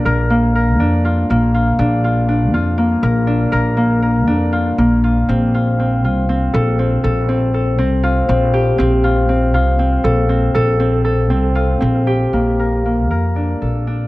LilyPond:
<<
  \new Staff \with { instrumentName = "Harp" } { \time 7/8 \key bes \major \tempo 4 = 120 bes'8 bes8 bes'8 d'8 f'8 bes8 f'8 | d'8 f'8 d'8 f'8 bes8 bes'8 d'8 | bes'8 bes8 bes'8 d'8 f'8 bes8 f'8 | c'8 f'8 c'8 f'8 c'8 a'8 c'8 |
a'8 c'8 a'8 c'8 f'8 c'8 g'8 | c'8 f'8 c'8 f'8 c'8 a'8 c'8 | a'8 c'8 a'8 c'8 f'8 c'8 g'8 | bes8 bes'8 bes8 bes'8 d'8 a'8 d'8 | }
  \new Staff \with { instrumentName = "Upright bass" } { \clef bass \time 7/8 \key bes \major bes,,4. f,4 bes,,4 | bes,,4. f,4 bes,,4 | bes,,4. f,4 bes,,4 | bes,,4. c,4 bes,,4 |
bes,,4. c,4 bes,,4 | bes,,4. c,4 bes,,4 | bes,,4. c,4 bes,,4 | bes,,4. f,4 bes,,4 | }
>>